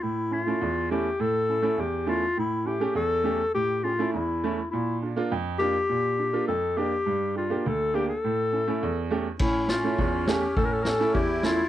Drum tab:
CC |----------------|----------------|----------------|----------------|
SD |----------------|----------------|----------------|----------------|
BD |----------------|----------------|----------------|----------------|

CC |x---------------|
SD |--o---o---oo--o-|
BD |o---o---o---o---|